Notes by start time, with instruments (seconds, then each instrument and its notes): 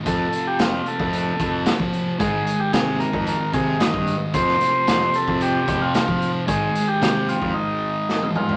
0.04 distorted electric guitar F2 C3 F3, fingered electric bass F2, transistor combo organ A4, kick, closed hi-hat
0.32 closed hi-hat
0.47 transistor combo organ G4
0.59 fingered electric bass F2, transistor combo organ F4, snare, closed hi-hat
0.86 transistor combo organ A4, closed hi-hat
0.99 fingered electric bass F2, kick
1.13 closed hi-hat
1.40 fingered electric bass F2, kick, closed hi-hat
1.66 snare, closed hi-hat
1.80 fingered electric bass F3, kick
1.93 closed hi-hat
2.19 distorted electric guitar G#2 D#3 G#3, fingered electric bass G#2, transistor combo organ G#4, kick, closed hi-hat
2.47 closed hi-hat
2.60 transistor combo organ G4
2.73 fingered electric bass C3, transistor combo organ G#4, snare, closed hi-hat
3.00 transistor combo organ A#4, closed hi-hat
3.13 fingered electric bass F2, kick
3.27 transistor combo organ A#4, closed hi-hat
3.54 fingered electric bass C3, transistor combo organ G#4, kick, closed hi-hat
3.80 transistor combo organ D#5, snare, closed hi-hat
3.94 fingered electric bass G2, kick
4.07 closed hi-hat
4.34 distorted electric guitar F2 C3 F3, fingered electric bass F2, transistor combo organ C5, kick, closed hi-hat
4.48 snare
4.61 snare, closed hi-hat
4.87 fingered electric bass F2, snare, closed hi-hat
5.01 snare
5.14 transistor combo organ A4, closed hi-hat
5.28 fingered electric bass F2, kick
5.41 transistor combo organ G4, closed hi-hat
5.68 fingered electric bass F2, kick, snare, closed hi-hat
5.82 transistor combo organ F4
5.94 transistor combo organ F4, snare, closed hi-hat
6.08 fingered electric bass F3, kick
6.22 closed hi-hat
6.47 distorted electric guitar G#2 D#3 G#3, fingered electric bass G#2, transistor combo organ G#4, kick, closed hi-hat
6.75 closed hi-hat
6.88 transistor combo organ G4
7.01 fingered electric bass C3, snare, closed hi-hat
7.28 transistor combo organ F4, closed hi-hat
7.42 fingered electric bass F2, kick
7.54 transistor combo organ D#4
8.09 snare
8.22 high tom
8.36 transistor combo organ F4, mid tom
8.49 floor tom